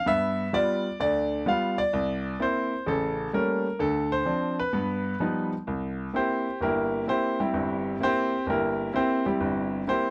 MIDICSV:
0, 0, Header, 1, 2, 480
1, 0, Start_track
1, 0, Tempo, 466563
1, 69, Time_signature, 4, 2, 24, 8
1, 10394, End_track
2, 0, Start_track
2, 0, Title_t, "Grand piano"
2, 0, Program_c, 0, 0
2, 63, Note_on_c, 0, 43, 58
2, 65, Note_on_c, 0, 59, 59
2, 77, Note_on_c, 0, 76, 101
2, 482, Note_off_c, 0, 43, 0
2, 483, Note_off_c, 0, 59, 0
2, 547, Note_on_c, 0, 55, 48
2, 548, Note_on_c, 0, 59, 44
2, 552, Note_on_c, 0, 65, 55
2, 556, Note_on_c, 0, 74, 94
2, 567, Note_off_c, 0, 76, 0
2, 881, Note_off_c, 0, 55, 0
2, 881, Note_off_c, 0, 59, 0
2, 884, Note_off_c, 0, 65, 0
2, 998, Note_off_c, 0, 74, 0
2, 1027, Note_on_c, 0, 38, 59
2, 1029, Note_on_c, 0, 50, 63
2, 1034, Note_on_c, 0, 74, 94
2, 1444, Note_off_c, 0, 38, 0
2, 1444, Note_off_c, 0, 50, 0
2, 1477, Note_off_c, 0, 74, 0
2, 1503, Note_on_c, 0, 55, 54
2, 1503, Note_on_c, 0, 59, 50
2, 1509, Note_on_c, 0, 65, 57
2, 1526, Note_on_c, 0, 77, 84
2, 1812, Note_off_c, 0, 77, 0
2, 1833, Note_on_c, 0, 74, 92
2, 1839, Note_off_c, 0, 55, 0
2, 1839, Note_off_c, 0, 59, 0
2, 1842, Note_off_c, 0, 65, 0
2, 1988, Note_on_c, 0, 36, 67
2, 2403, Note_off_c, 0, 36, 0
2, 2463, Note_on_c, 0, 58, 49
2, 2466, Note_on_c, 0, 60, 46
2, 2469, Note_on_c, 0, 64, 56
2, 2490, Note_off_c, 0, 74, 0
2, 2492, Note_on_c, 0, 72, 85
2, 2798, Note_off_c, 0, 58, 0
2, 2800, Note_off_c, 0, 60, 0
2, 2801, Note_off_c, 0, 64, 0
2, 2947, Note_on_c, 0, 33, 61
2, 2950, Note_on_c, 0, 49, 60
2, 2963, Note_on_c, 0, 69, 82
2, 2973, Note_off_c, 0, 72, 0
2, 3363, Note_off_c, 0, 33, 0
2, 3364, Note_off_c, 0, 49, 0
2, 3401, Note_off_c, 0, 69, 0
2, 3429, Note_on_c, 0, 55, 55
2, 3431, Note_on_c, 0, 57, 48
2, 3435, Note_on_c, 0, 58, 49
2, 3438, Note_on_c, 0, 61, 58
2, 3439, Note_on_c, 0, 70, 76
2, 3761, Note_off_c, 0, 55, 0
2, 3762, Note_off_c, 0, 57, 0
2, 3764, Note_off_c, 0, 58, 0
2, 3766, Note_off_c, 0, 61, 0
2, 3903, Note_on_c, 0, 38, 59
2, 3906, Note_on_c, 0, 50, 62
2, 3911, Note_on_c, 0, 69, 81
2, 3927, Note_off_c, 0, 70, 0
2, 4235, Note_off_c, 0, 69, 0
2, 4240, Note_on_c, 0, 72, 90
2, 4320, Note_off_c, 0, 38, 0
2, 4322, Note_off_c, 0, 50, 0
2, 4378, Note_on_c, 0, 53, 49
2, 4378, Note_on_c, 0, 60, 44
2, 4387, Note_on_c, 0, 62, 54
2, 4678, Note_off_c, 0, 72, 0
2, 4715, Note_off_c, 0, 53, 0
2, 4715, Note_off_c, 0, 60, 0
2, 4720, Note_off_c, 0, 62, 0
2, 4727, Note_on_c, 0, 71, 80
2, 4866, Note_on_c, 0, 43, 63
2, 4866, Note_on_c, 0, 59, 61
2, 5282, Note_off_c, 0, 43, 0
2, 5282, Note_off_c, 0, 59, 0
2, 5351, Note_on_c, 0, 53, 53
2, 5353, Note_on_c, 0, 55, 49
2, 5353, Note_on_c, 0, 59, 47
2, 5359, Note_on_c, 0, 63, 57
2, 5633, Note_off_c, 0, 71, 0
2, 5681, Note_off_c, 0, 53, 0
2, 5682, Note_off_c, 0, 59, 0
2, 5683, Note_off_c, 0, 55, 0
2, 5686, Note_off_c, 0, 63, 0
2, 5836, Note_on_c, 0, 36, 59
2, 6247, Note_off_c, 0, 36, 0
2, 6310, Note_on_c, 0, 58, 46
2, 6315, Note_on_c, 0, 60, 44
2, 6320, Note_on_c, 0, 64, 54
2, 6337, Note_on_c, 0, 72, 72
2, 6338, Note_on_c, 0, 67, 59
2, 6641, Note_off_c, 0, 58, 0
2, 6643, Note_off_c, 0, 60, 0
2, 6646, Note_off_c, 0, 64, 0
2, 6768, Note_off_c, 0, 67, 0
2, 6768, Note_off_c, 0, 72, 0
2, 6796, Note_on_c, 0, 31, 60
2, 6813, Note_on_c, 0, 70, 73
2, 6820, Note_on_c, 0, 58, 59
2, 6820, Note_on_c, 0, 64, 60
2, 6821, Note_on_c, 0, 67, 58
2, 7207, Note_off_c, 0, 31, 0
2, 7246, Note_off_c, 0, 70, 0
2, 7250, Note_off_c, 0, 58, 0
2, 7250, Note_off_c, 0, 64, 0
2, 7250, Note_off_c, 0, 67, 0
2, 7271, Note_on_c, 0, 58, 50
2, 7276, Note_on_c, 0, 60, 47
2, 7282, Note_on_c, 0, 64, 59
2, 7295, Note_on_c, 0, 72, 88
2, 7299, Note_on_c, 0, 67, 65
2, 7588, Note_off_c, 0, 72, 0
2, 7590, Note_off_c, 0, 67, 0
2, 7600, Note_off_c, 0, 64, 0
2, 7601, Note_off_c, 0, 58, 0
2, 7601, Note_off_c, 0, 60, 0
2, 7610, Note_on_c, 0, 67, 64
2, 7613, Note_on_c, 0, 55, 53
2, 7616, Note_on_c, 0, 60, 51
2, 7616, Note_on_c, 0, 64, 54
2, 7753, Note_on_c, 0, 31, 61
2, 7755, Note_on_c, 0, 43, 64
2, 8165, Note_off_c, 0, 31, 0
2, 8166, Note_off_c, 0, 43, 0
2, 8197, Note_off_c, 0, 67, 0
2, 8199, Note_off_c, 0, 55, 0
2, 8200, Note_off_c, 0, 60, 0
2, 8200, Note_off_c, 0, 64, 0
2, 8233, Note_on_c, 0, 58, 49
2, 8233, Note_on_c, 0, 60, 45
2, 8235, Note_on_c, 0, 64, 54
2, 8251, Note_off_c, 0, 60, 0
2, 8265, Note_on_c, 0, 72, 96
2, 8266, Note_on_c, 0, 67, 80
2, 8267, Note_on_c, 0, 60, 72
2, 8562, Note_off_c, 0, 58, 0
2, 8563, Note_off_c, 0, 64, 0
2, 8692, Note_off_c, 0, 72, 0
2, 8693, Note_off_c, 0, 60, 0
2, 8693, Note_off_c, 0, 67, 0
2, 8707, Note_on_c, 0, 31, 62
2, 8741, Note_on_c, 0, 67, 63
2, 8742, Note_on_c, 0, 70, 76
2, 8743, Note_on_c, 0, 58, 61
2, 8744, Note_on_c, 0, 64, 60
2, 9122, Note_off_c, 0, 31, 0
2, 9170, Note_off_c, 0, 67, 0
2, 9171, Note_off_c, 0, 70, 0
2, 9172, Note_off_c, 0, 58, 0
2, 9172, Note_off_c, 0, 64, 0
2, 9187, Note_on_c, 0, 58, 55
2, 9190, Note_on_c, 0, 60, 49
2, 9194, Note_on_c, 0, 64, 60
2, 9206, Note_off_c, 0, 60, 0
2, 9215, Note_on_c, 0, 72, 84
2, 9220, Note_on_c, 0, 67, 66
2, 9222, Note_on_c, 0, 60, 63
2, 9508, Note_off_c, 0, 72, 0
2, 9511, Note_off_c, 0, 67, 0
2, 9512, Note_off_c, 0, 60, 0
2, 9512, Note_off_c, 0, 64, 0
2, 9520, Note_off_c, 0, 58, 0
2, 9527, Note_on_c, 0, 67, 66
2, 9528, Note_on_c, 0, 55, 54
2, 9528, Note_on_c, 0, 64, 51
2, 9530, Note_on_c, 0, 60, 52
2, 9672, Note_on_c, 0, 31, 68
2, 10085, Note_off_c, 0, 31, 0
2, 10116, Note_off_c, 0, 64, 0
2, 10116, Note_off_c, 0, 67, 0
2, 10117, Note_off_c, 0, 55, 0
2, 10117, Note_off_c, 0, 60, 0
2, 10157, Note_on_c, 0, 58, 49
2, 10161, Note_on_c, 0, 60, 44
2, 10167, Note_on_c, 0, 64, 57
2, 10174, Note_on_c, 0, 72, 86
2, 10179, Note_on_c, 0, 67, 67
2, 10394, Note_off_c, 0, 58, 0
2, 10394, Note_off_c, 0, 60, 0
2, 10394, Note_off_c, 0, 64, 0
2, 10394, Note_off_c, 0, 67, 0
2, 10394, Note_off_c, 0, 72, 0
2, 10394, End_track
0, 0, End_of_file